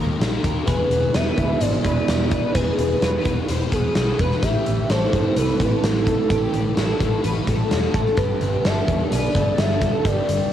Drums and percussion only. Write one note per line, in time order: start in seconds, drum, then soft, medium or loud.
0.21 snare medium
0.21 closed hi-hat medium
0.44 kick medium
0.44 closed hi-hat medium
0.68 kick loud
0.68 closed hi-hat medium
0.91 closed hi-hat medium
1.14 snare medium
1.14 closed hi-hat medium
1.38 kick medium
1.38 closed hi-hat medium
1.61 closed hi-hat medium
1.85 kick medium
1.85 closed hi-hat medium
2.08 snare medium
2.08 closed hi-hat medium
2.31 kick medium
2.31 closed hi-hat medium
2.55 kick loud
2.55 closed hi-hat medium
2.78 closed hi-hat medium
3.02 snare medium
3.02 closed hi-hat medium
3.25 kick medium
3.25 closed hi-hat medium
3.48 closed hi-hat medium
3.72 kick medium
3.72 closed hi-hat medium
3.95 snare medium
3.95 closed hi-hat medium
4.19 kick medium
4.19 closed hi-hat medium
4.31 snare soft
4.43 kick loud
4.43 closed hi-hat medium
4.66 closed hi-hat soft
4.90 snare medium
4.90 closed hi-hat medium
5.13 kick medium
5.13 closed hi-hat medium
5.36 closed hi-hat medium
5.60 kick medium
5.60 closed hi-hat medium
5.84 snare loud
5.84 closed hi-hat medium
6.07 kick medium
6.07 closed hi-hat medium
6.30 kick loud
6.30 closed hi-hat medium
6.54 closed hi-hat medium
6.77 snare medium
6.77 closed hi-hat medium
7.00 kick medium
7.00 closed hi-hat medium
7.24 closed hi-hat medium
7.47 kick medium
7.47 closed hi-hat medium
7.71 snare medium
7.71 closed hi-hat medium
7.94 kick medium
7.94 closed hi-hat medium
8.06 snare soft
8.17 kick loud
8.17 closed hi-hat medium
8.41 closed hi-hat medium
8.65 snare medium
8.65 closed hi-hat medium
8.88 kick medium
8.88 closed hi-hat soft
9.12 closed hi-hat medium
9.35 kick medium
9.35 closed hi-hat medium
9.58 snare loud
9.58 closed hi-hat medium
9.82 kick medium
9.82 closed hi-hat medium
10.05 kick medium
10.05 closed hi-hat medium
10.29 closed hi-hat medium